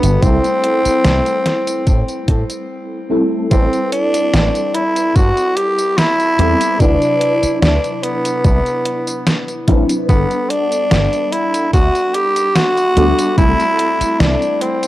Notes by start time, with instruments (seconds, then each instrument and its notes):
Already playing: fm electric piano G3 B3 D4 F#4 A4, tenor saxophone B3
0.03 slap bass G1, closed hi-hat, tambourine
0.21 slap bass C2, fm electric piano G3 A3 C4 E4 A4, tenor saxophone C4, kick, closed hi-hat, tambourine
0.44 closed hi-hat, tambourine
0.64 closed hi-hat
0.85 muted slap bass stroke, closed hi-hat, tambourine
1.05 slap bass C2, snare, closed hi-hat, tambourine
1.26 closed hi-hat, tambourine
1.46 snare, closed hi-hat
1.67 closed hi-hat, tambourine
1.87 slap bass A2, kick, closed hi-hat, tambourine
2.08 closed hi-hat, tambourine
2.28 slap bass A2, kick, closed hi-hat
2.50 closed hi-hat, tambourine
3.09 fm electric piano G3 A3 C4 E4 A4
3.50 slap bass A1, fm electric piano G3 C4 E4 A4 B4, tenor saxophone C4, kick, closed hi-hat, tambourine
3.73 closed hi-hat, tambourine
3.92 tenor saxophone D4, closed hi-hat
4.14 closed hi-hat, tambourine
4.34 slap bass A1, snare, closed hi-hat, tambourine
4.55 closed hi-hat, tambourine
4.74 tenor saxophone E4, closed hi-hat
4.96 closed hi-hat, tambourine
5.16 slap bass G2, tenor saxophone F#4, kick, closed hi-hat, tambourine
5.37 closed hi-hat, tambourine
5.56 tenor saxophone G4, closed hi-hat
5.79 closed hi-hat, tambourine
5.98 tenor saxophone E4, snare, closed hi-hat, tambourine
6.20 closed hi-hat, tambourine
6.38 slap bass E2, fm electric piano G3 B3 C4 E4 A4, closed hi-hat
6.61 closed hi-hat, tambourine
6.79 slap bass D2, fm electric piano C3 F#3 D4 E4 B4, tenor saxophone D4, kick, closed hi-hat, tambourine
7.02 closed hi-hat, tambourine
7.21 closed hi-hat
7.43 muted slap bass stroke, closed hi-hat, tambourine
7.62 slap bass D2, tenor saxophone D4, snare, closed hi-hat, tambourine
7.84 closed hi-hat, tambourine
8.03 tenor saxophone B3, closed hi-hat
8.25 closed hi-hat, tambourine
8.44 slap bass C2, kick, closed hi-hat, tambourine
8.66 closed hi-hat, tambourine
8.85 closed hi-hat
9.07 closed hi-hat, tambourine
9.27 snare, closed hi-hat, tambourine
9.48 closed hi-hat, tambourine
9.67 slap bass A1, fm electric piano F#3 C4 D4 E4 B4, kick, closed hi-hat
9.89 closed hi-hat, tambourine
10.08 slap bass G1, fm electric piano G3 B3 D4 A4 F#5, tenor saxophone B3, kick, closed hi-hat, tambourine
10.31 closed hi-hat, tambourine
10.50 tenor saxophone D4, closed hi-hat
10.72 closed hi-hat, tambourine
10.91 slap bass G1, snare, closed hi-hat, tambourine
11.13 closed hi-hat, tambourine
11.32 tenor saxophone E4, closed hi-hat
11.54 closed hi-hat, tambourine
11.73 slap bass D2, tenor saxophone F#4, kick, closed hi-hat, tambourine
11.95 closed hi-hat, tambourine
12.14 tenor saxophone G4, closed hi-hat
12.36 closed hi-hat, tambourine
12.56 tenor saxophone F#4, snare, closed hi-hat, tambourine
12.77 closed hi-hat, tambourine
12.96 slap bass D2, fm electric piano G3 B3 D4 F#4 A4, closed hi-hat
13.19 closed hi-hat, tambourine
13.36 slap bass C2, fm electric piano G3 A3 C4 E4 A4, tenor saxophone E4, kick, closed hi-hat, tambourine
13.60 closed hi-hat, tambourine
13.79 closed hi-hat
14.01 muted slap bass stroke, closed hi-hat, tambourine
14.20 slap bass C2, tenor saxophone D4, snare, closed hi-hat, tambourine
14.42 closed hi-hat, tambourine
14.61 tenor saxophone C4, closed hi-hat
14.83 closed hi-hat, tambourine